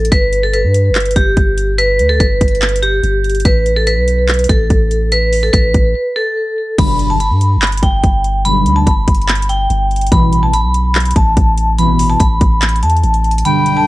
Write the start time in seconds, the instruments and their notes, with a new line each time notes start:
Already playing: 808-style bass A1
0.05 closed hi-hat
0.12 808-style bass G1, vibraphone B4, kick, closed hi-hat
0.33 closed hi-hat
0.43 vibraphone A4
0.54 vibraphone B4, closed hi-hat
0.64 808-style bass G2
0.74 closed hi-hat
0.90 808-style bass G1
0.95 clap, closed hi-hat
1.00 closed hi-hat
1.06 closed hi-hat
1.11 closed hi-hat
1.16 808-style bass G1, vibraphone G4, kick, closed hi-hat
1.37 808-style bass G1, kick, closed hi-hat
1.58 closed hi-hat
1.78 vibraphone B4, closed hi-hat
1.99 808-style bass D2, closed hi-hat
2.09 vibraphone A4
2.20 808-style bass G1, vibraphone B4, kick, closed hi-hat
2.41 808-style bass G1, kick, closed hi-hat
2.48 closed hi-hat
2.55 closed hi-hat
2.62 clap, closed hi-hat
2.69 closed hi-hat
2.76 closed hi-hat
2.83 vibraphone G4, closed hi-hat
3.03 808-style bass G1, closed hi-hat
3.24 closed hi-hat
3.30 closed hi-hat
3.35 closed hi-hat
3.40 closed hi-hat
3.45 808-style bass A1, vibraphone B4, kick, closed hi-hat
3.66 closed hi-hat
3.76 vibraphone A4
3.87 vibraphone B4, closed hi-hat
3.97 808-style bass B1
4.08 closed hi-hat
4.29 clap, closed hi-hat
4.34 closed hi-hat
4.39 closed hi-hat
4.44 closed hi-hat
4.49 808-style bass A1, vibraphone A4, kick, closed hi-hat
4.70 808-style bass A1, kick, closed hi-hat
4.91 closed hi-hat
5.12 vibraphone B4, closed hi-hat
5.33 open hi-hat
5.43 vibraphone A4
5.53 808-style bass A1, vibraphone B4, kick, closed hi-hat
5.74 808-style bass A1, kick, closed hi-hat
6.16 vibraphone A4
6.78 808-style bass G1, analog polysynth B1 G2 D3, vibraphone B5, kick, closed hi-hat, crash
6.99 closed hi-hat
7.10 vibraphone A5
7.20 vibraphone B5, closed hi-hat
7.31 808-style bass G2
7.41 closed hi-hat
7.57 808-style bass G1
7.62 clap, closed hi-hat
7.67 closed hi-hat
7.72 closed hi-hat
7.78 closed hi-hat
7.83 808-style bass G1, vibraphone G5, kick, closed hi-hat
8.04 808-style bass G1, kick, closed hi-hat
8.24 closed hi-hat
8.45 analog polysynth B1 G2 D3, vibraphone B5, closed hi-hat
8.66 808-style bass D2, closed hi-hat
8.76 vibraphone A5
8.87 808-style bass G1, vibraphone B5, kick, closed hi-hat
9.08 808-style bass G1, kick, closed hi-hat
9.15 closed hi-hat
9.22 closed hi-hat
9.28 clap, closed hi-hat
9.35 closed hi-hat
9.42 closed hi-hat
9.49 vibraphone G5, closed hi-hat
9.70 808-style bass G1, closed hi-hat
9.91 closed hi-hat
9.96 closed hi-hat
10.01 closed hi-hat
10.07 closed hi-hat
10.12 808-style bass A1, analog polysynth C2 B2 E3, vibraphone B5, kick, closed hi-hat
10.33 closed hi-hat
10.43 vibraphone A5
10.53 vibraphone B5, closed hi-hat
10.64 808-style bass B1
10.74 closed hi-hat
10.95 clap, closed hi-hat
11.00 closed hi-hat
11.05 closed hi-hat
11.11 closed hi-hat
11.16 808-style bass A1, vibraphone A5, kick, closed hi-hat
11.37 808-style bass A1, kick, closed hi-hat
11.58 closed hi-hat
11.78 analog polysynth C2 B2 E3, vibraphone B5, closed hi-hat
11.99 open hi-hat
12.10 vibraphone A5
12.20 808-style bass A1, vibraphone B5, kick, closed hi-hat
12.41 808-style bass A1, kick, closed hi-hat
12.62 clap, closed hi-hat
12.69 closed hi-hat
12.76 closed hi-hat
12.83 808-style bass E2, vibraphone A5, closed hi-hat
12.90 closed hi-hat
12.97 closed hi-hat
13.03 808-style bass A1, closed hi-hat
13.14 closed hi-hat
13.24 closed hi-hat
13.31 closed hi-hat
13.38 closed hi-hat
13.45 analog polysynth B1 G2 D3, flute G5, vibraphone B5, closed hi-hat
13.66 closed hi-hat
13.77 vibraphone A5